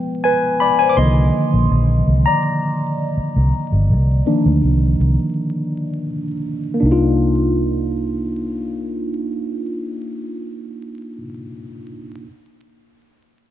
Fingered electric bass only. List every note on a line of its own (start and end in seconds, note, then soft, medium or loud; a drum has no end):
0.97 1.29 C2 medium
1.54 1.68 A#1 medium
1.71 2.02 A#1 medium
2.07 2.24 C2 medium
3.17 muted fingered electric bass stroke soft
3.36 3.51 C2 medium
3.72 3.92 G1 medium
3.90 4.22 C2 medium
4.46 4.61 D2 medium
4.63 4.95 C2 medium
5.00 5.16 C2 medium
6.83 11.21 C2 medium